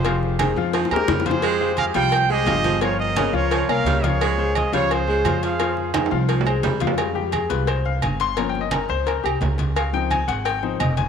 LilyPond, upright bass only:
\new Staff \with { instrumentName = "Upright bass" } { \clef bass \time 4/4 \key f \minor \tempo 4 = 173 f,,4. f,4 ees,8 f,4~ | f,4. c,4. g,,4~ | g,,4. des,4 c,8 des,4~ | des,4. des,4. f,4~ |
f,4. c,4. f,4~ | f,4. c,4. g,,4~ | g,,4. des,4 c,8 des,4~ | des,4. aes,,4. f,,4 | }